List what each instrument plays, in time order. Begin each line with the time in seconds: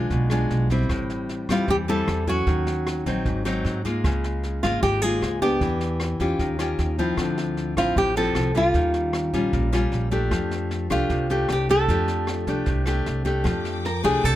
Already playing: nylon-string guitar G#3 D4 F4 G#4
0.10 upright bass B1, nylon-string guitar B2, kick, snare
0.30 nylon-string guitar G#3 D4 F4, cross-stick, snare
0.50 upright bass B1, snare
0.70 nylon-string guitar G3 C4 E4, kick, snare
0.89 upright bass A1, nylon-string guitar A2, kick, cross-stick, snare
1.10 snare
1.29 snare
1.49 upright bass E2, nylon-string guitar G3 C4 E4 F4, kick, cross-stick, snare
1.68 upright bass E2, nylon-string guitar E3 G4, kick, snare
1.88 nylon-string guitar G3 C4 E4 A4, snare
2.08 upright bass E2, cross-stick, snare
2.27 nylon-string guitar F#3 C#4 F#4, kick, snare
2.47 upright bass D#2, nylon-string guitar D#3, kick, snare
2.67 snare
2.87 cross-stick, snare
3.06 upright bass A#1, nylon-string guitar F#3 C4 D#4, kick, snare
3.26 upright bass G#1, nylon-string guitar G#2, kick, snare
3.45 nylon-string guitar F#3 C4 D#4, cross-stick, snare
3.65 upright bass G#2, snare
3.85 nylon-string guitar G#3 A#3 F4, kick, snare
4.04 upright bass C#2, nylon-string guitar C#3, kick, cross-stick, snare
4.24 snare
4.43 snare
4.63 upright bass G#1, nylon-string guitar G#3 A#3 F4, kick, cross-stick, snare
4.82 upright bass G#1, nylon-string guitar G#2 G4, kick, snare
5.02 nylon-string guitar G#3 A#3 F4 G#4, snare
5.22 upright bass C#2, cross-stick, snare
5.41 nylon-string guitar B3 D4 G4, kick, snare
5.61 upright bass E2, nylon-string guitar E3, kick, snare
5.81 snare
6.00 cross-stick, snare
6.20 upright bass E2, nylon-string guitar C#4 F4 G4, kick, snare
6.39 upright bass D#2, nylon-string guitar D#3, kick, snare
6.59 nylon-string guitar C#4 F4 G4, cross-stick, snare
6.79 upright bass D#2, snare
6.98 nylon-string guitar F3 C4 E4, kick, snare
7.17 upright bass D2, nylon-string guitar D3, kick, cross-stick, snare
7.37 snare
7.57 snare
7.77 upright bass A1, nylon-string guitar F3 C4 E4 F4, kick, cross-stick, snare
7.96 upright bass A1, nylon-string guitar A2 G4, kick, snare
8.16 nylon-string guitar F3 C4 E4 A4, snare
8.35 upright bass C2, cross-stick, snare
8.54 nylon-string guitar G3 C#4 F4, kick, snare
8.74 upright bass D#2, nylon-string guitar D#3, kick, snare
8.94 snare
9.13 cross-stick, snare
9.33 upright bass A#1, nylon-string guitar G3 C#4 F4, kick, snare
9.53 upright bass A#1, nylon-string guitar A#2, kick, snare
9.72 nylon-string guitar G3 C#4 F4, cross-stick, snare
9.92 upright bass A#1, snare
10.11 nylon-string guitar A3 D4 G4, kick, snare
10.31 upright bass F2, nylon-string guitar F3, kick, cross-stick, snare
10.51 snare
10.71 snare
10.90 upright bass C2, nylon-string guitar A3 D4 F4 G4, kick, cross-stick, snare
11.10 upright bass C2, nylon-string guitar C3, kick, snare
11.30 nylon-string guitar A3 D4 G4, snare
11.49 upright bass C2, nylon-string guitar G4, cross-stick, snare
11.69 nylon-string guitar A3 D4 G4 A4, kick, snare
11.88 upright bass F2, nylon-string guitar F3 A3 D4 G4, kick, snare
12.08 snare
12.27 cross-stick, snare
12.47 upright bass C2, nylon-string guitar A3 D4 G4, kick, snare
12.66 upright bass C2, nylon-string guitar C3, kick, snare
12.86 nylon-string guitar A3 D4 G4, cross-stick, snare
13.06 upright bass C2, snare
13.25 nylon-string guitar A3 D4 G4, kick, snare
13.44 upright bass F2, nylon-string guitar F3, string section A4 G5 D6, kick, cross-stick, snare
13.65 snare
13.85 nylon-string guitar A#4, snare
14.04 upright bass C2, nylon-string guitar A3 D4 G4 G#4, kick, cross-stick, snare
14.24 upright bass C2, nylon-string guitar C3 A4, kick, snare